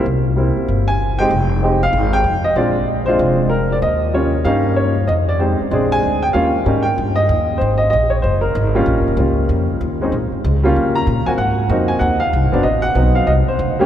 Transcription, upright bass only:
X:1
M:4/4
L:1/8
Q:"Swing" 1/4=190
K:Ebmix
V:1 name="Upright bass" clef=bass
C,,3 z G,,,4 | F,,,4 A,,,2 F,,2 | B,,,4 F,,,4 | E,,4 G,,4 |
F,,3 z B,,,2 =D,,2 | E,,2 A,,2 G,,2 E,,2 | A,,,2 B,,,2 _G,,,2 A,,,2 | (3B,,, G,,, E,,, D,,2 F,,2 E,,2 |
B,,, z D,,2 E,,2 B,, z | A,,2 F,,2 E,,2 (3C,, A,,, _G,,, | =A,,,2 _C,,2 =C,, z =D,,2 |]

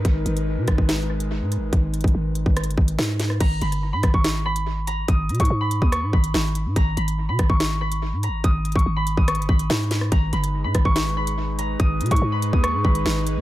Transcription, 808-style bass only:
X:1
M:4/4
L:1/16
Q:1/4=143
K:G#m
V:1 name="808-style bass" clef=bass
G,,,2 G,,,3 B,, G,,, G,,,6 G,,3/2 G,,,3/2 | G,,,3 G,,, G,,,3 G,,,2 =G,,, ^G,,,2 G,,4 | G,,,2 =G,,,3 ^G,, ^G,,, G,,,8- G,,, | G,,,2 B,, G,, G,,3 D,,2 G,, G,,,2 G,,,3 G,, |
G,,,2 G,,,3 B,, G,,, G,,,6 G,,3/2 G,,,3/2 | G,,,3 G,,, G,,,3 G,,,2 =G,,, ^G,,,2 G,,4 | G,,,2 =G,,,3 ^G,, ^G,,, G,,,8- G,,, | G,,,2 B,, G,, G,,3 D,,2 G,, G,,,2 G,,,3 G,, |]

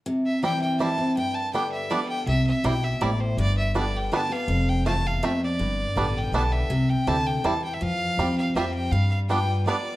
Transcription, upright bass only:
X:1
M:3/4
L:1/8
Q:1/4=162
K:C
V:1 name="Upright bass" clef=bass
z6 | z6 | C,,2 B,,,2 A,,,2 | G,,,6 |
F,,,6 | G,,,2 A,,,2 B,,,2 | C,,2 D,,2 E,,2 | F,,2 E,,2 F,,2 |
G,,6 |]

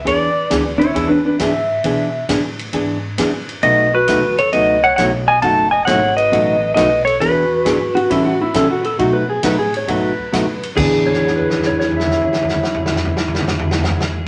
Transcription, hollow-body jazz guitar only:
X:1
M:4/4
L:1/8
Q:"Swing" 1/4=134
K:Emix
V:1 name="Hollow-body jazz guitar"
[E,B,DG] z [E,B,DG] z [E,B,DG] z [E,B,DG] z | [E,B,DG] z [E,B,DG] z [E,B,DG] z [E,B,DG] z | [B,,F,A,^DF] z [B,,F,A,DF] z [B,,F,A,DF] z [B,,F,A,DF] z | [B,,F,A,^DF] z [B,,F,A,DF] z [B,,F,A,DF] z [B,,F,A,DF] z |
[E,B,DG] z [E,B,DG] z [E,=G,CEA] z [E,G,CEA] z | [B,,F,A,^DF] z [B,,F,A,DF] z [B,,F,A,DF] z [B,,F,A,DF] z | [E,B,DG]8- | [E,B,DG]8 |]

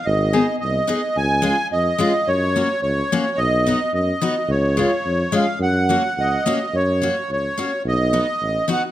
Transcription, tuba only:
X:1
M:2/4
L:1/8
Q:"Swing" 1/4=108
K:F#
V:1 name="Tuba" clef=bass
G,,,2 ^B,,, z | C,,2 E,, z | F,,2 C,, z | B,,,2 F,, z |
C,,2 E,, z | F,,2 C,, z | F,,2 C,, z | B,,,2 =A,,, z |]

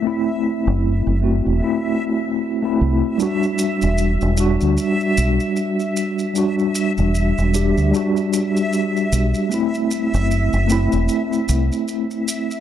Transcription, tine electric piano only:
X:1
M:4/4
L:1/16
Q:"Swing 16ths" 1/4=76
K:Em
V:1 name="Tine electric piano"
[A,CE]6 [A,CF]2 [A,CE]4- [A,CE] [A,CE]3 | [G,DF]6 [G,DF]8- [G,DF]2 | [G,DF]6 [G,DG]2 [G,DF]8 | [A,CE]6 [A,CE]8- [A,CE]2 |]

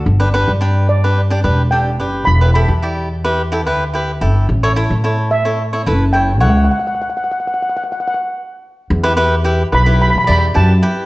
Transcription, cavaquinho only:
X:1
M:4/4
L:1/16
Q:1/4=109
K:Em
V:1 name="Cavaquinho"
z [DGB] [DGB] z [DGB]2 z [DGB] z [DGd] [DGB] z [DGA] z [DGB]2 | z [EGB] [EGA] z [EGd]2 z [EGB] z [EGA] [EGB] z [EGB] z [EGA]2 | z [EA^c] [EAc] z [EAc]2 z [EAc] z [EAc] [EAB] z [EAc] z [EAc]2 | z16 |
z [EGB] [EGB] z [EGB] z [EGB] [EGB]2 z [EGd] z [EGB] z [EGB]2 |]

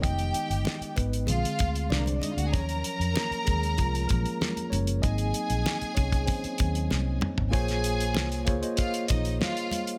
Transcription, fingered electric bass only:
X:1
M:4/4
L:1/16
Q:1/4=96
K:Bbm
V:1 name="Fingered electric bass" clef=bass
F,,,2 z =G,,, z2 A,,,2 B,,, z =D,,2 C,,2 z D,, | E,,2 z F,, z2 E,,2 C,,2 B,,, z3 G,,,2 | A,,,2 z B,,, z2 C,,2 z2 E,,2 C,,2 z A,,, | B,,,4 C,,2 D,, z3 B,,,2 z4 |]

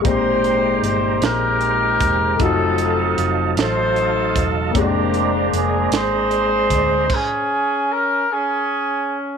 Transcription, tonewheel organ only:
X:1
M:6/8
L:1/8
Q:3/8=51
K:Bbdor
V:1 name="Tonewheel organ"
[A,cgb]6 | [_G,ef=a]6 | [A,c=db]6 | z6 |]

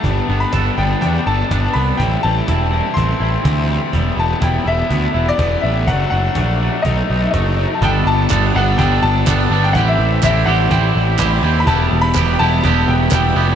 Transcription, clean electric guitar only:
X:1
M:4/4
L:1/8
Q:1/4=124
K:G
V:1 name="Clean electric guitar"
G, B, A B, D A D B, | G, G, E G, C E C G, | G, G, E G, B, E B, G, | F, F, D F, F, ^D A, F, |
[G,B,DA]2 [G,B,DA] [G,B,DA] [G,B,DA]2 [G,B,DA] [G,B,DA] | [G,CEG]2 [G,CEG] [G,CEG] [G,CEG]2 [G,CEG] [G,CEG] | [G,B,EG]2 [G,B,EG] [G,B,EG] [G,B,EG]2 [G,B,EG] [G,B,EG] |]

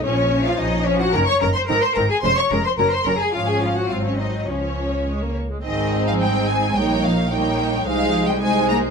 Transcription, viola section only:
X:1
M:2/4
L:1/16
Q:1/4=108
K:Db
V:1 name="Viola section"
[F,D]2 [F,D]4 [F,D]2 | [E,D]2 [E,D]2 [E,C]2 [E,C]2 | [A,D]2 [A,D]2 [G,D]2 [G,D]2 | [F,D]4 [G,C]4 |
[F,D]4 A, B,2 A, | [K:Ab] [CE]8 | [B,E]4 [B,E]4 | [A,E]4 [A,E]4 |]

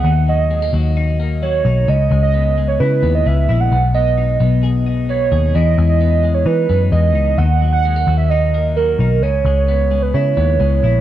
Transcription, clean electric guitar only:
X:1
M:4/4
L:1/16
Q:1/4=131
K:C#dor
V:1 name="Clean electric guitar"
D,2 F,2 G, A, F,2 D2 A,2 F,2 D2 | C,2 G,2 B,2 G,2 E2 B,2 G,2 E2 | B,,2 B,2 D2 B,2 G2 D2 B,2 G2 | E,2 G,2 B,2 G,2 D2 B,2 G,2 D2 |
D,2 F,2 G, A, F,2 D2 A,2 F,2 D2 | C,2 G,2 B,2 G,2 E2 B,2 G,2 E2 |]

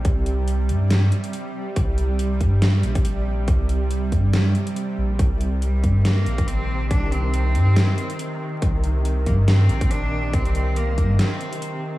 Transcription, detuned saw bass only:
X:1
M:4/4
L:1/8
Q:"Swing 16ths" 1/4=140
K:Cm
V:1 name="Detuned saw bass" clef=bass
C,,3 G,,2 z3 | C,,3 G,,2 B,,,3 | C,,3 G,,2 z2 B,,, | C,,3 G,,2 B,,,3 |
C,,3 G,,2 z3 | C,,3 G,,2 B,,,3 | C,,3 G,, z4 |]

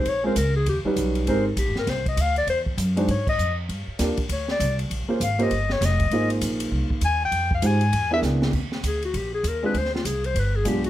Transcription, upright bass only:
X:1
M:4/4
L:1/8
Q:"Swing" 1/4=198
K:Eb
V:1 name="Upright bass" clef=bass
B,,,2 _D,,2 E,, z =B,,,2 | A,,,2 (3B,,, A,,, G,,, C,,2 D,,2 | =E,,2 ^F,,2 A,,2 =F,,2 | G,, z E,, z D,,2 C,,2 |
B,,, z A,,,2 G,,,2 F,,,2 | A,,,2 B,,,2 C,, z E,,2 | F,,2 A,,2 =E,,2 _D,,2 | E,,2 D,,2 B,,,2 E,,2 |
D,,2 C,,2 G,,,2 =B,,,2 |]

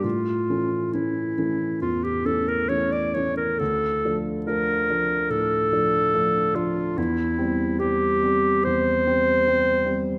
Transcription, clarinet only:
X:1
M:4/4
L:1/16
Q:1/4=71
K:Dm
V:1 name="Clarinet"
F4 E4 F G A B ^c d c B | A3 z B4 A6 F2 | E4 G4 c8 |]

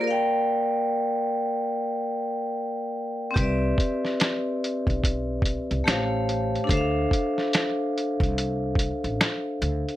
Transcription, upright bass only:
X:1
M:4/4
L:1/16
Q:"Swing 16ths" 1/4=72
K:Dm
V:1 name="Upright bass" clef=bass
z16 | C,,2 z4 z =B,,,4 C,, A,,,4 | D,,2 z4 z C,,4 A,,, z2 D,, z |]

